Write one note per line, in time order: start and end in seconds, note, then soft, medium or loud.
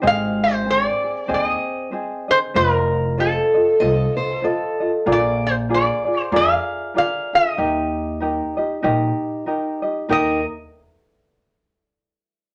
0.02 0.85 G#1 loud
0.02 0.65 C4 medium
0.02 0.65 G#4 medium
0.02 0.65 C5 medium
0.02 0.64 D#5 medium
0.07 0.43 F5 loud
0.44 0.69 C5 medium
0.65 1.03 C4 medium
0.65 1.02 G#4 medium
0.65 1.02 C5 medium
0.70 1.33 D5 medium
1.04 1.27 C4 soft
1.04 1.27 G#4 soft
1.28 1.53 D#2 loud
1.28 1.92 C4 medium
1.28 1.92 G#4 medium
1.28 1.91 C5 medium
1.28 1.93 D#5 medium
1.34 1.90 D#5 medium
1.91 2.29 C4 medium
1.91 2.28 G#4 medium
1.91 2.29 C5 medium
1.91 2.27 D#5 medium
2.28 2.55 C4 soft
2.28 2.55 G#4 soft
2.28 2.37 C5 loud
2.28 2.54 D#5 soft
2.54 3.37 F1 loud
2.54 3.18 F4 medium
2.54 3.20 A#4 loud
2.54 3.16 C5 loud
2.54 3.18 D#5 medium
3.17 3.55 F4 medium
3.17 3.54 A4 medium
3.17 4.41 A4 medium
3.17 3.54 C5 medium
3.17 3.53 D#5 medium
3.54 3.80 F4 soft
3.54 3.80 A4 soft
3.54 3.80 D#5 soft
3.80 4.05 C2 loud
3.80 4.43 F4 medium
3.80 4.42 A4 medium
3.80 4.41 C5 medium
3.80 4.15 D#5 loud
3.80 4.43 D#5 medium
4.17 4.44 C5 medium
4.42 4.80 F4 medium
4.42 4.80 A4 medium
4.42 4.90 A4 medium
4.42 4.80 C5 medium
4.42 4.79 D#5 medium
4.80 5.05 F4 soft
4.80 5.06 A4 soft
4.80 5.06 D#5 medium
5.06 5.88 A#1 loud
5.06 5.68 F4 medium
5.06 5.69 G#4 medium
5.06 5.69 A#4 medium
5.06 5.69 D5 loud
5.12 5.47 D5 loud
5.47 5.53 C5 medium
5.69 6.06 F4 medium
5.69 6.05 G#4 medium
5.69 6.06 A#4 medium
5.69 6.03 D5 medium
5.74 6.21 D5 medium
6.05 6.31 F4 soft
6.05 6.31 G#4 soft
6.05 6.31 D5 soft
6.21 6.37 C5 medium
6.31 6.56 F2 loud
6.31 6.94 F4 medium
6.31 6.95 G#4 medium
6.31 6.94 A#4 medium
6.31 6.95 D5 medium
6.36 6.97 F5 loud
6.94 7.32 F4 medium
6.94 7.32 G#4 medium
6.94 7.32 A#4 medium
6.94 7.33 D5 medium
6.94 7.35 F5 loud
7.33 7.57 F4 soft
7.33 7.57 G#4 soft
7.33 9.44 D#5 medium
7.57 8.40 D#2 medium
7.57 8.21 D#4 medium
7.57 8.21 G4 medium
7.57 8.20 A#4 medium
7.57 8.22 D#5 medium
8.20 8.57 D#4 medium
8.20 8.57 G4 medium
8.20 8.57 A#4 medium
8.20 8.56 D#5 medium
8.57 8.82 D#4 soft
8.57 8.82 G4 soft
8.57 8.83 D#5 medium
8.82 9.08 A#1 medium
8.82 9.46 D#4 loud
8.82 9.47 G4 medium
8.82 9.46 A#4 medium
8.82 9.47 D#5 loud
9.46 9.83 D#4 medium
9.46 9.82 G4 medium
9.46 9.83 A#4 medium
9.46 9.81 D#5 medium
9.82 10.09 D#4 soft
9.82 10.08 G4 soft
9.82 10.09 D#5 medium
10.09 10.44 D#2 loud
10.09 10.39 D#4 medium
10.09 10.39 G4 loud
10.09 10.38 A#4 medium
10.09 10.44 A#4 medium
10.09 10.40 D#5 loud
10.09 10.45 D#5 medium